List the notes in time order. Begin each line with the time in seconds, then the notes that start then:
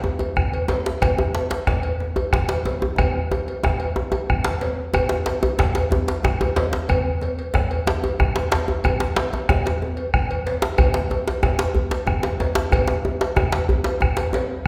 0.04 djembe tone
0.19 cowbell, djembe tone
0.36 bombo rim, bombo low, djembe slap, djembe bass
0.53 cowbell
0.68 cowbell, djembe slap, djembe tone
0.86 djembe slap
1.02 bombo rim, bombo low, cowbell, djembe slap, djembe bass
1.18 djembe tone
1.34 cowbell, djembe slap, djembe tone
1.50 cowbell, djembe slap
1.67 bombo rim, bombo low, djembe slap, djembe bass
1.83 bombo rim, cowbell
2.00 djembe tone
2.16 cowbell, djembe tone
2.33 bombo rim, bombo low, djembe slap, djembe bass
2.49 cowbell, djembe slap
2.65 cowbell, djembe slap, djembe tone
2.82 djembe slap, djembe tone
2.98 bombo rim, bombo low, cowbell, djembe tone, djembe bass
3.31 cowbell, djembe slap, djembe tone
3.48 bombo rim, cowbell
3.63 bombo rim, bombo low, djembe slap, djembe tone, djembe bass
3.80 cowbell, djembe slap
3.96 bombo rim, djembe tone
4.12 bombo rim, cowbell, djembe slap, djembe tone
4.29 bombo rim, bombo low, djembe bass
4.44 cowbell, djembe slap
4.61 cowbell, djembe slap, djembe tone
4.78 djembe slap
4.94 bombo rim, bombo low, cowbell, djembe tone, djembe bass
5.09 djembe slap
5.26 bombo rim, cowbell, djembe slap, djembe tone
5.43 cowbell, djembe tone
5.59 bombo rim, bombo low, djembe slap, djembe bass
5.75 bombo rim, cowbell, djembe slap
5.91 djembe tone
6.08 cowbell, djembe slap
6.23 bombo rim, bombo low, djembe slap, djembe bass
6.41 cowbell, djembe tone
6.56 cowbell, djembe slap, djembe tone
6.73 djembe slap
6.89 bombo rim, bombo low, cowbell, djembe bass
7.21 bombo rim, cowbell, djembe tone
7.39 cowbell
7.54 bombo rim, bombo low, djembe slap, djembe bass
7.71 cowbell
7.87 djembe slap, djembe tone
8.04 cowbell, djembe tone
8.19 bombo rim, bombo low, djembe slap, djembe tone, djembe bass
8.35 cowbell, djembe slap
8.52 cowbell, djembe slap, djembe tone
8.68 djembe slap, djembe tone
8.84 bombo rim, bombo low, cowbell, djembe tone, djembe bass
9.00 djembe slap
9.16 bombo rim, cowbell, djembe slap, djembe tone
9.33 cowbell, djembe tone
9.49 bombo rim, bombo low, djembe slap, djembe tone, djembe bass
9.66 bombo rim, cowbell, djembe slap
9.82 djembe tone
9.97 cowbell
10.14 bombo rim, bombo low, djembe slap, djembe bass
10.31 cowbell
10.46 cowbell, djembe slap, djembe tone
10.62 djembe slap
10.78 bombo rim, bombo low, cowbell, djembe bass
10.94 bombo rim, djembe slap
11.10 bombo rim, cowbell, djembe tone
11.27 cowbell, djembe slap
11.43 bombo rim, bombo low, djembe slap, djembe tone, djembe bass
11.59 cowbell, djembe slap
11.75 bombo rim, djembe tone, djembe bass
11.91 cowbell, djembe slap
12.07 bombo rim, bombo low, djembe tone, djembe bass
12.23 cowbell, djembe slap
12.40 cowbell, djembe slap, djembe tone
12.55 djembe slap
12.72 bombo rim, bombo low, cowbell, djembe bass
12.88 djembe slap
13.05 bombo rim, djembe tone
13.21 cowbell, djembe slap
13.36 bombo rim, bombo low, djembe slap, djembe tone, djembe bass
13.52 cowbell, djembe slap
13.69 djembe tone, djembe bass
13.84 cowbell, djembe slap
14.01 bombo rim, bombo low, djembe slap, djembe tone, djembe bass
14.17 cowbell, djembe slap
14.33 cowbell, djembe slap, djembe tone
14.50 djembe slap